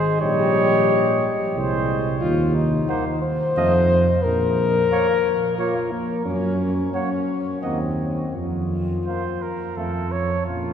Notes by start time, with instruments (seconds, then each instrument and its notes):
Already playing: tuba G#1, trombone G#3, french horn G#4, flugelhorn C5, trumpet D#5
0.21 tuba A#1, trombone G3, french horn G4, flugelhorn C#5, trumpet D#5
1.55 tuba C2, trombone G#3, flugelhorn C5, trumpet D#5
2.21 tuba D#2, french horn F4
2.54 french horn D#4
2.88 trombone A#3, flugelhorn C5, trumpet F#5
3.22 french horn C5
3.56 tuba F2, trombone A3, flugelhorn D#5, trumpet F5
4.23 tuba A#1, french horn A#4
4.91 trombone A#3, flugelhorn C#5, trumpet F5
5.58 trombone A#3, french horn F4, flugelhorn C#5, trumpet F5
5.91 french horn A#3
6.26 tuba F#2, french horn C#4
6.93 trombone A#3, french horn C#4, flugelhorn C#5, trumpet F#5
7.62 tuba D#2, trombone A#3, french horn C4, flugelhorn D#5, trumpet F#5
8.35 tuba F2, french horn F4
9.06 trombone A#3, flugelhorn C5, trumpet F5
9.42 flugelhorn A#4
9.76 tuba F2, trombone A3, flugelhorn A4, trumpet F5
10.11 flugelhorn C#5
10.47 tuba A#1, trombone A#3, french horn C#4, flugelhorn F4, trumpet F5